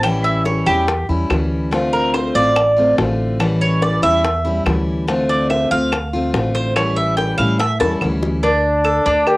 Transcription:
0.00 0.61 A1 medium
0.00 0.66 E3 medium
0.00 0.24 G5 medium
0.00 high bongo medium
0.04 0.66 G3 medium
0.04 0.67 C#4 medium
0.04 0.66 E4 medium
0.04 claves medium
0.24 0.45 E5 medium
0.24 high bongo soft
0.45 0.66 C#5 medium
0.45 high bongo medium
0.66 1.06 E2 medium
0.66 0.87 G3 medium
0.66 0.88 C#4 medium
0.66 0.87 E4 medium
0.66 1.06 G4 medium
0.66 high bongo soft
0.66 claves medium
0.88 muted steel-string acoustic guitar stroke medium
0.88 high bongo medium
1.09 1.29 E2 medium
1.09 1.30 G3 medium
1.09 1.30 C#4 medium
1.09 1.29 E4 medium
1.09 high bongo soft
1.30 2.29 D2 medium
1.30 1.71 E3 soft
1.30 1.72 G3 soft
1.30 1.72 C#4 medium
1.30 1.73 E4 medium
1.30 high bongo medium
1.30 low bongo medium
1.30 claves medium
1.71 2.34 D3 medium
1.71 2.37 A3 medium
1.71 2.35 C4 medium
1.71 2.34 F4 medium
1.71 high bongo medium
1.93 2.14 A#4 medium
2.14 2.35 C5 medium
2.14 high bongo medium
2.14 claves medium
2.35 2.94 A1 medium
2.35 2.55 A3 medium
2.35 2.55 C4 medium
2.35 2.55 F4 medium
2.35 2.94 D5 loud
2.56 muted steel-string acoustic guitar stroke medium
2.56 high bongo medium
2.56 claves medium
2.76 2.98 A3 soft
2.76 2.98 C4 medium
2.76 2.97 F4 medium
2.98 3.97 A1 medium
2.98 3.39 D3 medium
2.98 3.40 A3 medium
2.98 3.40 C4 medium
2.98 3.40 F4 medium
2.98 high bongo medium
2.98 low bongo medium
3.40 4.02 E3 medium
3.40 4.03 G3 medium
3.40 4.03 C#4 medium
3.40 4.01 E4 medium
3.40 high bongo medium
3.40 claves medium
3.61 3.82 C#5 medium
3.61 high bongo soft
3.82 4.03 D5 medium
3.82 high bongo medium
4.02 4.62 E2 medium
4.02 4.23 G3 medium
4.02 4.24 C#4 medium
4.02 4.23 E4 medium
4.02 4.62 E5 loud
4.02 high bongo soft
4.02 claves medium
4.24 muted steel-string acoustic guitar stroke medium
4.24 high bongo medium
4.45 4.65 G3 medium
4.45 4.66 C#4 medium
4.45 4.65 E4 medium
4.45 high bongo soft
4.66 5.65 D2 medium
4.66 5.07 E3 medium
4.66 5.07 G3 medium
4.66 5.08 C#4 medium
4.66 5.08 E4 medium
4.66 high bongo medium
4.66 low bongo medium
4.66 claves medium
5.07 5.70 D3 medium
5.07 5.73 A3 medium
5.07 5.71 C4 medium
5.07 5.70 F4 medium
5.07 high bongo medium
5.29 5.49 D5 medium
5.50 5.70 E5 medium
5.50 high bongo medium
5.50 claves medium
5.71 6.30 D2 medium
5.71 5.92 A3 medium
5.71 5.92 C4 medium
5.71 5.91 F4 medium
5.71 6.30 F5 loud
5.92 muted steel-string acoustic guitar stroke medium
5.92 high bongo medium
5.92 claves medium
6.13 6.34 A3 medium
6.13 6.34 C4 medium
6.13 6.33 F4 medium
6.34 7.32 A1 medium
6.34 6.75 D3 soft
6.34 6.75 A3 medium
6.34 6.76 C4 medium
6.34 6.76 F4 medium
6.34 high bongo medium
6.34 low bongo medium
6.55 6.75 C5 medium
6.76 7.38 E3 medium
6.76 7.38 G3 medium
6.76 7.38 C#4 medium
6.76 7.37 E4 medium
6.76 6.96 C#5 medium
6.76 high bongo medium
6.76 claves medium
6.97 7.17 E5 medium
6.97 high bongo soft
7.17 7.37 G5 medium
7.17 high bongo medium
7.38 7.78 A2 medium
7.38 7.59 G3 medium
7.38 7.59 C#4 medium
7.38 7.59 E4 medium
7.38 7.59 F5 loud
7.38 high bongo soft
7.38 claves medium
7.60 7.80 E5 medium
7.60 muted steel-string acoustic guitar stroke medium
7.60 high bongo medium
7.80 8.00 E2 medium
7.80 8.01 G3 medium
7.80 8.01 C#4 medium
7.80 8.00 E4 medium
7.80 7.93 A5 loud
7.80 high bongo loud
8.01 9.00 D2 medium
8.01 8.43 E3 soft
8.01 8.43 G3 medium
8.01 8.43 C#4 medium
8.01 8.44 E4 medium
8.01 high bongo medium
8.01 claves medium
8.23 low bongo medium
8.43 8.84 D4 medium
8.43 9.29 D4 loud
8.43 cowbell loud
8.84 9.05 A4 medium
8.84 cowbell medium
8.84 claves medium
9.06 9.37 D2 medium
9.06 9.37 D4 medium
9.06 cowbell medium
9.27 9.37 G4 loud
9.27 cowbell loud
9.27 claves medium

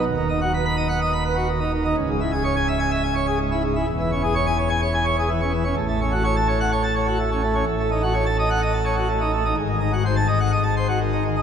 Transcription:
0.05 1.93 D#1 medium
0.05 1.93 D#2 medium
0.17 0.27 D#3 medium
0.29 0.40 D#4 medium
0.41 0.52 F#4 medium
0.54 0.64 B4 medium
0.65 0.76 B5 medium
0.77 0.88 D#5 medium
0.89 0.99 F#5 medium
1.01 1.12 D#5 medium
1.13 1.23 B5 medium
1.25 1.35 B4 medium
1.36 1.47 F#4 medium
1.49 1.59 D#3 medium
1.61 1.72 D#4 medium
1.73 1.83 D#3 medium
1.85 1.95 D#4 medium
1.96 3.84 C#1 medium
1.96 3.84 C#2 medium
2.09 2.20 G#2 medium
2.21 2.31 E4 medium
2.32 2.43 G#4 medium
2.44 2.55 C#5 medium
2.56 2.67 G#5 loud
2.68 2.79 E5 medium
2.79 2.90 G#5 medium
2.91 3.02 E5 medium
3.03 3.14 G#5 medium
3.15 3.26 C#5 medium
3.27 3.38 G#4 medium
3.40 3.51 G#2 medium
3.52 3.62 E4 medium
3.64 3.75 G#2 medium
3.76 3.86 E4 medium
3.88 5.74 E1 medium
3.88 5.74 E2 medium
4.00 4.11 E3 medium
4.12 4.22 C#4 medium
4.23 4.34 G#4 medium
4.35 4.46 C#5 medium
4.47 4.57 G#5 loud
4.59 4.69 C#5 medium
4.69 4.81 G#5 medium
4.82 4.93 C#5 medium
4.94 5.05 G#5 medium
5.05 5.16 C#5 medium
5.19 5.29 G#4 medium
5.30 5.40 E3 medium
5.41 5.52 C#4 medium
5.53 5.64 E3 medium
5.64 5.75 C#4 medium
5.76 7.62 A1 loud
5.76 7.62 A2 medium
5.89 5.99 A3 medium
6.01 6.12 C#4 medium
6.12 6.23 F#4 medium
6.24 6.35 C#5 medium
6.37 6.47 A5 loud
6.48 6.59 C#5 medium
6.60 6.71 F#5 medium
6.72 6.82 C#5 medium
6.84 6.94 A5 medium
6.96 7.06 C#5 medium
7.08 7.18 F#4 medium
7.19 7.30 A3 medium
7.32 7.42 C#4 medium
7.43 7.54 A3 medium
7.55 7.65 C#4 medium
7.67 9.53 A1 medium
7.67 9.53 A2 medium
7.80 7.90 A3 medium
7.91 8.01 D#4 medium
8.03 8.13 F#4 medium
8.14 8.24 C#5 medium
8.26 8.37 A5 loud
8.39 8.49 D#5 medium
8.50 8.61 F#5 medium
8.62 8.72 D#5 medium
8.74 8.84 A5 medium
8.85 8.96 C#5 medium
8.97 9.08 F#4 medium
9.09 9.19 A3 medium
9.21 9.31 D#4 medium
9.33 9.43 A3 medium
9.45 9.55 D#4 medium
9.57 11.42 G#1 medium
9.57 11.42 G#2 medium
9.69 9.79 D#3 medium
9.80 9.91 D#4 medium
9.93 10.03 F#4 medium
10.05 10.15 C5 medium
10.17 10.27 A5 loud
10.28 10.39 D#5 medium
10.40 10.51 F#5 medium
10.52 10.63 D#5 medium
10.64 10.75 A5 medium
10.77 10.87 C5 medium
10.89 10.99 F#4 medium
11.01 11.11 D#3 medium
11.13 11.23 D#4 medium
11.25 11.35 D#3 medium
11.36 11.42 D#4 medium

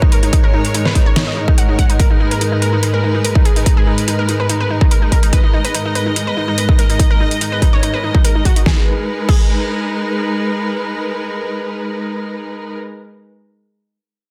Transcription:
0.00 8.62 G#2 medium
0.00 8.62 G#3 medium
0.00 0.11 D#4 medium
0.00 8.62 A#4 medium
0.00 1.98 C#5 medium
0.00 kick loud
0.12 0.22 A#4 medium
0.12 closed hi-hat medium
0.23 0.32 D#4 medium
0.23 closed hi-hat soft
0.33 0.42 D#4 medium
0.33 kick loud
0.33 closed hi-hat medium
0.44 0.52 A#4 medium
0.54 0.63 D#4 medium
0.65 closed hi-hat soft
0.74 0.84 D#4 medium
0.74 closed hi-hat medium
0.85 0.94 B4 medium
0.85 snare soft
0.95 1.05 D#4 medium
0.95 kick medium
0.95 closed hi-hat soft
1.06 1.15 C#5 medium
1.16 1.26 D#4 medium
1.16 snare loud
1.16 closed hi-hat medium
1.27 1.36 D#5 medium
1.37 1.47 D#4 medium
1.48 1.57 D#4 medium
1.48 kick loud
1.58 1.67 F#5 medium
1.58 closed hi-hat medium
1.69 1.77 D#4 medium
1.79 1.88 F#5 medium
1.79 kick medium
1.79 closed hi-hat soft
1.90 1.98 D#4 medium
1.90 closed hi-hat soft
1.99 2.09 A#4 medium
1.99 5.32 B4 medium
1.99 kick loud
1.99 closed hi-hat medium
2.10 2.19 D#4 medium
2.20 2.30 D#4 medium
2.31 2.40 A#4 medium
2.31 closed hi-hat soft
2.41 2.51 D#4 medium
2.41 closed hi-hat medium
2.52 2.61 D#4 medium
2.62 2.72 A#4 medium
2.62 closed hi-hat soft
2.73 2.82 D#4 medium
2.83 2.92 D#4 medium
2.83 closed hi-hat medium
2.94 3.02 A#4 medium
3.04 3.13 D#4 medium
3.15 3.23 D#4 medium
3.25 3.34 A#4 medium
3.25 closed hi-hat medium
3.35 3.44 D#4 medium
3.35 kick medium
3.45 3.55 G#4 medium
3.45 closed hi-hat soft
3.56 3.65 D#4 medium
3.56 closed hi-hat soft
3.66 3.76 D#4 medium
3.66 kick loud
3.66 closed hi-hat medium
3.77 3.86 G#4 medium
3.87 3.97 D#4 medium
3.98 closed hi-hat soft
4.08 4.17 D#4 medium
4.08 closed hi-hat medium
4.19 4.27 A#4 medium
4.29 4.38 D#4 medium
4.29 closed hi-hat soft
4.40 4.48 B4 medium
4.49 4.59 D#4 medium
4.49 closed hi-hat medium
4.60 4.69 B4 medium
4.70 4.80 D#4 medium
4.81 4.90 D#4 medium
4.81 kick medium
4.91 5.01 A#4 medium
4.91 closed hi-hat medium
5.02 5.11 D#4 medium
5.12 5.21 A#4 medium
5.12 kick medium
5.12 closed hi-hat soft
5.23 5.31 D#4 medium
5.23 closed hi-hat soft
5.33 5.42 B4 medium
5.33 8.65 D#5 medium
5.33 kick medium
5.33 closed hi-hat medium
5.44 5.52 D#4 medium
5.54 5.63 D#4 medium
5.64 5.73 B4 medium
5.64 closed hi-hat soft
5.74 5.84 D#4 medium
5.74 closed hi-hat medium
5.85 5.94 D#4 medium
5.95 6.05 B4 medium
5.95 closed hi-hat soft
6.06 6.15 D#4 medium
6.16 6.26 D#4 medium
6.16 closed hi-hat medium
6.27 6.36 B4 medium
6.37 6.47 D#4 medium
6.48 6.57 D#4 medium
6.58 6.67 B4 medium
6.58 closed hi-hat medium
6.69 6.77 D#4 medium
6.69 kick medium
6.79 6.88 A#4 medium
6.79 closed hi-hat soft
6.90 6.98 D#4 medium
6.90 closed hi-hat soft
6.99 7.09 D#4 medium
6.99 kick loud
6.99 closed hi-hat medium
7.10 7.19 A#4 medium
7.20 7.30 D#4 medium
7.31 closed hi-hat soft
7.41 7.51 D#4 medium
7.41 closed hi-hat medium
7.52 7.61 B4 medium
7.62 7.72 D#4 medium
7.62 kick medium
7.62 closed hi-hat soft
7.73 7.82 C#5 medium
7.83 7.92 D#4 medium
7.83 closed hi-hat medium
7.94 8.02 B4 medium
8.04 8.13 D#4 medium
8.15 8.23 D#4 medium
8.15 kick medium
8.24 8.34 A#4 medium
8.24 closed hi-hat medium
8.35 8.44 D#4 medium
8.45 8.55 F#4 medium
8.45 kick medium
8.45 closed hi-hat soft
8.56 8.65 D#4 medium
8.56 closed hi-hat soft
8.66 12.76 G#3 medium
8.66 12.76 D#4 medium
8.66 8.78 G#4 medium
8.66 12.76 A#4 medium
8.66 12.75 B4 medium
8.66 kick loud
8.66 snare medium
9.29 13.46 G#4 medium
9.29 kick loud
9.29 crash medium

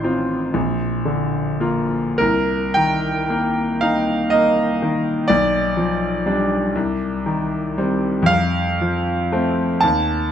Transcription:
0.00 0.51 A1 soft
0.00 0.35 D#3 soft
0.00 0.51 C4 soft
0.00 2.18 C5 medium
0.04 0.51 F4 soft
0.54 2.15 A#1 soft
1.05 1.95 D3 soft
1.60 2.15 A#3 soft
1.60 2.15 F4 soft
2.18 5.25 C2 soft
2.18 2.76 A#4 medium
2.74 3.61 D#3 soft
2.74 3.81 G5 medium
3.30 4.12 A#3 soft
3.81 4.62 D#4 soft
3.81 4.32 F5 medium
4.30 5.10 A#3 soft
4.30 5.28 D#5 medium
4.82 5.30 D#3 soft
5.28 6.72 B1 medium
5.28 8.29 D5 medium
5.77 6.55 F3 soft
6.26 6.71 G3 soft
6.26 6.72 D4 soft
6.75 8.26 C2 medium
7.26 8.09 D#3 soft
7.78 8.26 G3 soft
7.78 8.26 C4 soft
8.22 9.75 F2 medium
8.22 9.81 F5 medium
8.81 9.63 F3 soft
9.32 9.79 A3 soft
9.32 9.79 C4 soft
9.81 10.32 D#2 medium
9.81 10.32 A5 medium

